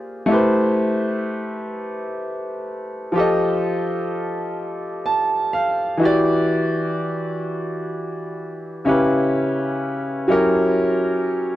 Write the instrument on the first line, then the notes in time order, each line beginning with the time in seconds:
grand piano
Already playing: A#3 F4 G4 G#4 C5 D5
0.26 A3 E4 G4
0.32 B4 C5
3.12 F3 F4 G4
3.18 A4 D#5
5.06 A5
5.53 F5
5.97 E3 E4 F#4
6.03 G4 D5
8.85 C#3 C#4 E4 G4 B4
10.28 F#3 C#4 E4 G4 A#4